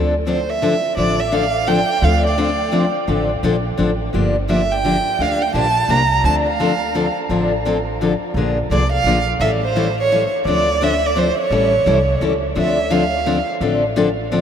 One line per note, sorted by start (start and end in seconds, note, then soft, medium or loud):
0.00 0.76 D2 medium
0.00 0.13 D3 medium
0.00 0.13 F3 medium
0.00 0.13 C4 medium
0.00 0.13 D4 medium
0.00 0.14 A4 medium
0.27 0.38 D3 medium
0.27 0.38 F3 medium
0.27 0.38 C4 medium
0.27 0.39 D4 medium
0.27 0.39 A4 medium
0.27 0.51 C5 medium
0.50 0.97 E5 medium
0.62 0.73 D3 medium
0.62 0.73 F3 medium
0.62 0.74 C4 medium
0.62 0.74 D4 medium
0.62 0.74 A4 medium
0.97 1.81 A1 medium
0.97 1.18 D3 medium
0.97 1.19 F3 medium
0.97 1.19 C4 medium
0.97 1.19 D4 medium
0.97 1.19 A4 medium
0.97 1.21 D5 medium
1.20 1.35 E5 medium
1.31 1.43 D3 medium
1.31 1.43 F3 medium
1.31 1.44 C4 medium
1.31 1.44 D4 medium
1.31 1.44 A4 medium
1.31 1.69 F5 medium
1.66 1.78 D3 medium
1.66 1.79 F3 medium
1.66 1.79 C4 medium
1.66 1.79 D4 medium
1.66 1.79 A4 medium
1.66 2.06 G5 medium
2.02 2.87 D2 medium
2.02 2.24 D3 medium
2.02 2.24 F3 medium
2.02 2.24 C4 medium
2.02 2.24 D4 medium
2.02 2.24 A4 medium
2.02 2.25 F5 medium
2.27 2.92 D5 medium
2.38 2.49 D3 medium
2.38 2.49 F3 medium
2.38 2.49 C4 medium
2.38 2.49 D4 medium
2.38 2.50 A4 medium
2.72 2.84 D3 medium
2.72 2.84 F3 medium
2.72 2.84 C4 medium
2.72 2.84 D4 medium
2.72 2.84 A4 medium
3.08 3.36 A1 medium
3.08 3.29 D3 medium
3.08 3.29 F3 medium
3.08 3.29 C4 medium
3.08 3.30 D4 medium
3.08 3.30 A4 medium
3.43 3.73 A#1 medium
3.43 3.54 D3 medium
3.43 3.55 F3 medium
3.43 3.55 C4 medium
3.43 3.55 D4 medium
3.43 3.55 A4 medium
3.77 4.08 A1 medium
3.77 3.89 D3 medium
3.77 3.89 F3 medium
3.77 3.90 C4 medium
3.77 3.90 D4 medium
3.77 3.90 A4 medium
4.13 4.98 G1 medium
4.13 4.34 D3 medium
4.13 4.35 F3 medium
4.13 4.35 A#3 medium
4.13 4.35 D4 medium
4.13 4.35 G4 medium
4.49 4.60 D3 medium
4.49 4.60 F3 medium
4.49 4.60 A#3 medium
4.49 4.60 D4 medium
4.49 4.60 G4 medium
4.49 4.73 E5 medium
4.72 5.23 G5 medium
4.85 4.95 D3 medium
4.85 4.95 F3 medium
4.85 4.96 A#3 medium
4.85 4.96 D4 medium
4.85 4.96 G4 medium
5.19 5.47 D2 medium
5.19 5.41 D3 medium
5.19 5.41 F3 medium
5.19 5.41 A#3 medium
5.19 5.41 D4 medium
5.19 5.41 G4 medium
5.19 5.43 F5 medium
5.42 5.55 G5 medium
5.54 5.84 A#1 medium
5.54 5.65 D3 medium
5.54 5.66 F3 medium
5.54 5.66 A#3 medium
5.54 5.66 D4 medium
5.54 5.66 G4 medium
5.54 5.92 A5 medium
5.89 6.19 C2 medium
5.89 6.00 D3 medium
5.89 6.00 F3 medium
5.89 6.01 A#3 medium
5.89 6.01 D4 medium
5.89 6.01 G4 medium
5.89 6.24 A#5 medium
6.24 7.08 D2 medium
6.24 6.45 D3 medium
6.24 6.46 F3 medium
6.24 6.46 C4 medium
6.24 6.46 D4 medium
6.24 6.46 A4 medium
6.24 6.35 A5 medium
6.48 7.13 F5 medium
6.60 6.71 D3 medium
6.60 6.71 F3 medium
6.60 6.71 C4 medium
6.60 6.71 D4 medium
6.60 6.71 A4 medium
6.95 7.06 D3 medium
6.95 7.06 F3 medium
6.95 7.06 C4 medium
6.95 7.06 D4 medium
6.95 7.06 A4 medium
7.29 8.14 A1 medium
7.29 7.51 D3 medium
7.29 7.51 F3 medium
7.29 7.51 C4 medium
7.29 7.51 D4 medium
7.29 7.51 A4 medium
7.65 7.76 D3 medium
7.65 7.76 F3 medium
7.65 7.77 C4 medium
7.65 7.77 D4 medium
7.65 7.77 A4 medium
8.01 8.12 D3 medium
8.01 8.12 F3 medium
8.01 8.12 C4 medium
8.01 8.12 D4 medium
8.01 8.12 A4 medium
8.34 8.63 A#1 medium
8.34 8.57 D3 medium
8.34 8.57 F3 medium
8.34 8.57 A#3 medium
8.34 8.57 D4 medium
8.34 8.57 G#4 medium
8.70 9.00 C2 medium
8.70 8.82 D3 medium
8.70 8.82 F3 medium
8.70 8.82 A#3 medium
8.70 8.82 D4 medium
8.70 8.83 G#4 medium
8.70 8.91 D5 medium
8.92 9.25 F5 medium
9.04 9.34 A#1 medium
9.04 9.17 D3 medium
9.04 9.17 F3 medium
9.04 9.17 A#3 medium
9.04 9.17 D4 medium
9.04 9.17 G#4 medium
9.40 10.24 A1 medium
9.40 9.62 E3 medium
9.40 9.62 G3 medium
9.40 9.62 C#4 medium
9.40 9.62 E4 medium
9.40 9.62 A4 medium
9.40 9.50 E5 medium
9.64 9.96 C5 medium
9.76 9.87 E3 medium
9.76 9.87 G3 medium
9.76 9.87 C#4 medium
9.76 9.87 E4 medium
9.76 9.87 A4 medium
10.00 10.31 C#5 medium
10.11 10.22 E3 medium
10.11 10.22 G3 medium
10.11 10.22 C#4 medium
10.11 10.23 E4 medium
10.11 10.23 A4 medium
10.45 11.30 D2 medium
10.45 10.67 D3 medium
10.45 10.68 F3 medium
10.45 10.68 C4 medium
10.45 10.68 D4 medium
10.45 10.68 A4 medium
10.45 10.85 D5 medium
10.81 10.92 D3 medium
10.81 10.92 F3 medium
10.81 10.93 C4 medium
10.81 10.93 D4 medium
10.81 10.93 A4 medium
10.81 11.08 E5 medium
11.06 11.20 D5 medium
11.16 11.27 D3 medium
11.16 11.27 F3 medium
11.16 11.27 C4 medium
11.16 11.27 D4 medium
11.16 11.28 A4 medium
11.16 11.39 C5 medium
11.40 12.18 C#5 medium
11.50 11.79 A1 medium
11.50 11.72 E3 medium
11.50 11.73 G3 medium
11.50 11.73 C#4 medium
11.50 11.73 E4 medium
11.50 11.73 A4 medium
11.86 12.16 C2 medium
11.86 11.97 E3 medium
11.86 11.97 G3 medium
11.86 11.98 C#4 medium
11.86 11.98 E4 medium
11.86 11.98 A4 medium
12.21 12.51 C#2 medium
12.21 12.32 E3 medium
12.21 12.32 G3 medium
12.21 12.33 C#4 medium
12.21 12.33 E4 medium
12.21 12.33 A4 medium
12.55 13.40 D2 medium
12.55 12.77 D3 medium
12.55 12.77 F3 medium
12.55 12.77 C4 medium
12.55 12.77 D4 medium
12.55 12.77 A4 medium
12.55 12.93 E5 medium
12.90 13.02 D3 medium
12.90 13.02 F3 medium
12.90 13.02 C4 medium
12.90 13.02 D4 medium
12.90 13.03 A4 medium
12.90 13.48 F5 medium
13.26 13.37 D3 medium
13.26 13.38 F3 medium
13.26 13.37 C4 medium
13.26 13.38 D4 medium
13.26 13.38 A4 medium
13.61 14.41 A1 medium
13.61 13.82 D3 medium
13.61 13.82 F3 medium
13.61 13.83 C4 medium
13.61 13.82 D4 medium
13.61 13.83 A4 medium
13.96 14.07 D3 medium
13.96 14.07 F3 medium
13.96 14.08 C4 medium
13.96 14.08 D4 medium
13.96 14.08 A4 medium
14.32 14.41 D3 medium
14.32 14.41 F3 medium
14.32 14.41 C4 medium
14.32 14.41 D4 medium
14.32 14.41 A4 medium